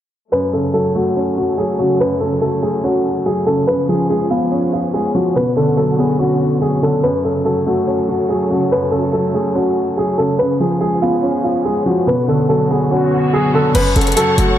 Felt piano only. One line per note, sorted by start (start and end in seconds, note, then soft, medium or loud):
0.32 1.37 F#2 medium
0.53 1.58 C#3 medium
0.74 1.56 F#3 medium
0.95 2.00 A3 medium
1.16 2.21 C#4 medium
1.58 2.41 F#3 medium
1.79 2.19 C#3 medium
2.00 3.05 F#2 medium
2.21 3.26 C#3 medium
2.42 3.24 F#3 medium
2.63 3.68 A3 medium
2.84 3.68 C#4 medium
3.26 3.68 F#3 medium
3.47 3.66 C#3 medium
3.68 4.73 C#3 medium
3.89 4.94 F3 medium
4.10 4.92 G#3 medium
4.31 5.36 B3 medium
4.51 5.35 C#4 medium
4.94 5.36 G#3 medium
5.15 5.36 F3 medium
5.36 6.41 B2 medium
5.57 6.61 D3 medium
5.77 6.60 F#3 medium
5.99 7.03 B3 medium
6.20 7.04 C#4 medium
6.61 7.03 F#3 medium
6.83 7.03 D3 medium
7.03 8.08 F#2 medium
7.25 8.29 C#3 medium
7.45 8.28 F#3 medium
7.67 8.71 A3 medium
7.87 8.92 C#4 medium
8.29 9.12 F#3 medium
8.50 8.91 C#3 medium
8.71 9.76 F#2 medium
8.92 9.97 C#3 medium
9.13 9.96 F#3 medium
9.34 10.39 A3 medium
9.55 10.39 C#4 loud
9.97 10.39 F#3 medium
10.18 10.38 C#3 medium
10.39 11.44 C#3 medium
10.60 11.65 F3 medium
10.81 11.64 G#3 medium
11.02 12.07 B3 medium
11.23 12.07 C#4 medium
11.65 12.07 G#3 medium
11.86 12.07 F3 medium
12.07 13.12 B2 medium
12.28 13.33 D3 medium
12.49 13.31 F#3 medium
12.70 13.75 B3 medium
12.91 13.75 C#4 medium
13.33 13.75 F#3 medium
13.54 13.75 D3 medium
13.75 14.58 F#2 loud
13.96 14.58 C#3 medium
14.17 14.58 F#3 medium
14.38 14.58 A3 medium